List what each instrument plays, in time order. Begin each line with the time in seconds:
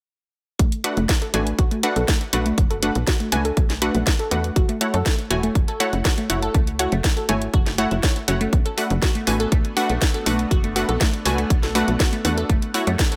0.59 analog synth bass B1, synth arpeggio sound A3, kick, closed hi-hat
0.72 closed hi-hat
0.84 synth pluck A3 D4 F#4 B4 F#5, synth arpeggio sound F#4, closed hi-hat
0.97 analog synth bass F#1, synth arpeggio sound A3, closed hi-hat
1.09 kick, snare, closed hi-hat
1.22 synth arpeggio sound A4, closed hi-hat
1.34 analog synth bass A1, synth arpeggio sound A3, synth pluck A3 D4 F#4 B4 G#5, closed hi-hat
1.47 closed hi-hat
1.59 analog synth bass B1, synth arpeggio sound F#4, kick, closed hi-hat
1.71 synth arpeggio sound A3, closed hi-hat
1.83 synth pluck A3 D4 F#4 B4 F#5, closed hi-hat
1.96 analog synth bass B1, synth arpeggio sound A4, closed hi-hat
2.08 synth arpeggio sound A3, kick, snare, closed hi-hat
2.21 closed hi-hat
2.33 analog synth bass B1, synth pluck A3 D4 F#4 B4 F#5, synth arpeggio sound F#4, closed hi-hat
2.46 synth arpeggio sound A3, closed hi-hat
2.58 analog synth bass F#1, kick, closed hi-hat
2.70 synth arpeggio sound A4, closed hi-hat
2.82 synth arpeggio sound A3, synth pluck A3 D4 F#4 B4 F#5, closed hi-hat
2.95 analog synth bass B1, closed hi-hat
3.07 synth arpeggio sound F#4, kick, snare, closed hi-hat
3.20 synth arpeggio sound A3, closed hi-hat
3.32 analog synth bass C#2, synth pluck A3 D4 F#4 B4 G#5, closed hi-hat
3.45 synth arpeggio sound A4, closed hi-hat
3.57 analog synth bass B1, synth arpeggio sound A3, kick, closed hi-hat
3.70 snare, closed hi-hat
3.82 synth pluck A3 D4 F#4 B4 F#5, synth arpeggio sound F#4, closed hi-hat
3.95 analog synth bass B1, synth arpeggio sound A3, closed hi-hat
4.07 kick, snare, closed hi-hat
4.19 synth arpeggio sound A4, closed hi-hat
4.31 analog synth bass E2, synth pluck A3 D4 F#4 B4 F#5, synth arpeggio sound A3, closed hi-hat
4.44 closed hi-hat
4.56 analog synth bass F#1, synth arpeggio sound F#4, kick, closed hi-hat
4.69 synth arpeggio sound A3, closed hi-hat
4.81 synth pluck A3 E4 F#4 C#5 F#5, closed hi-hat
4.94 analog synth bass F#2, synth arpeggio sound A4, closed hi-hat
5.06 synth arpeggio sound A3, kick, snare, closed hi-hat
5.19 closed hi-hat
5.30 analog synth bass E1, synth pluck A3 E4 F#4 C#5 G#5, synth arpeggio sound F#4, closed hi-hat
5.43 synth arpeggio sound A3, closed hi-hat
5.55 analog synth bass F#1, kick, closed hi-hat
5.68 synth arpeggio sound A4, closed hi-hat
5.80 synth pluck A3 E4 F#4 C#5 F#5, synth arpeggio sound A3, closed hi-hat
5.93 analog synth bass F#1, closed hi-hat
6.05 synth arpeggio sound F#4, kick, snare, closed hi-hat
6.18 synth arpeggio sound A3, closed hi-hat
6.30 analog synth bass F#1, synth pluck A3 E4 F#4 C#5 F#5, closed hi-hat
6.42 synth arpeggio sound A4, closed hi-hat
6.54 analog synth bass C#2, synth arpeggio sound A3, kick, closed hi-hat
6.67 closed hi-hat
6.79 synth pluck A3 E4 F#4 C#5 F#5, synth arpeggio sound F#4, closed hi-hat
6.92 analog synth bass F#1, synth arpeggio sound A3, closed hi-hat
7.04 kick, snare, closed hi-hat
7.17 synth arpeggio sound A4, closed hi-hat
7.29 analog synth bass G#1, synth pluck A3 E4 F#4 C#5 G#5, synth arpeggio sound A3, closed hi-hat
7.42 closed hi-hat
7.54 analog synth bass F#1, synth arpeggio sound F#4, kick, closed hi-hat
7.66 synth arpeggio sound A3, snare, closed hi-hat
7.78 synth pluck A3 E4 F#4 C#5 F#5, closed hi-hat
7.91 analog synth bass F#1, synth arpeggio sound E4, closed hi-hat
8.03 synth arpeggio sound C#5, kick, snare, closed hi-hat
8.16 closed hi-hat
8.28 analog synth bass F#1, synth pluck A3 E4 F#4 C#5 F#5, synth arpeggio sound C#4, closed hi-hat
8.41 synth arpeggio sound A3, closed hi-hat
8.53 analog synth bass B1, ambient pad A3 B3 D4, kick, closed hi-hat
8.66 synth arpeggio sound A4, closed hi-hat
8.77 synth pluck A3 D4 F#4 B4 F#5, synth arpeggio sound A3, open hi-hat
8.90 analog synth bass F#1, closed hi-hat
9.02 synth arpeggio sound F#4, kick, snare, closed hi-hat
9.15 synth arpeggio sound A3, closed hi-hat
9.27 analog synth bass A1, synth pluck A3 D4 F#4 B4 G#5, open hi-hat
9.40 synth arpeggio sound A4, closed hi-hat
9.52 analog synth bass B1, synth arpeggio sound A3, kick, closed hi-hat
9.65 closed hi-hat
9.77 synth pluck A3 D4 F#4 B4 F#5, synth arpeggio sound F#4, open hi-hat
9.89 analog synth bass B1, synth arpeggio sound A3, closed hi-hat
10.02 kick, snare, closed hi-hat
10.14 synth arpeggio sound A4, closed hi-hat
10.26 analog synth bass B1, synth arpeggio sound A3, synth pluck A3 D4 F#4 B4 F#5, open hi-hat
10.39 closed hi-hat
10.51 analog synth bass F#1, synth arpeggio sound F#4, kick, closed hi-hat
10.64 synth arpeggio sound A3, closed hi-hat
10.76 synth pluck A3 D4 F#4 B4 F#5, open hi-hat
10.89 analog synth bass B1, synth arpeggio sound A4, closed hi-hat
11.01 synth arpeggio sound A3, kick, snare, closed hi-hat
11.14 closed hi-hat
11.25 analog synth bass C#2, synth pluck A3 D4 F#4 B4 G#5, synth arpeggio sound F#4, open hi-hat
11.38 synth arpeggio sound A3, closed hi-hat
11.50 analog synth bass B1, kick, closed hi-hat
11.63 synth arpeggio sound A4, snare, closed hi-hat
11.75 synth pluck A3 D4 F#4 B4 F#5, synth arpeggio sound A3, open hi-hat
11.88 analog synth bass B1, closed hi-hat
12.00 synth arpeggio sound F#4, kick, snare, closed hi-hat
12.13 synth arpeggio sound A3, closed hi-hat
12.25 analog synth bass E2, synth pluck A3 D4 F#4 B4 F#5, open hi-hat
12.37 synth arpeggio sound A4, closed hi-hat
12.49 analog synth bass F#1, ambient pad F#3 C#4 E4 G#4 A4, synth arpeggio sound A3, kick, closed hi-hat
12.62 closed hi-hat
12.74 synth pluck A3 E4 F#4 C#5 F#5, synth arpeggio sound F#4, open hi-hat
12.87 analog synth bass F#2, synth arpeggio sound A3, closed hi-hat
12.99 kick, snare, closed hi-hat
13.12 synth arpeggio sound A4, closed hi-hat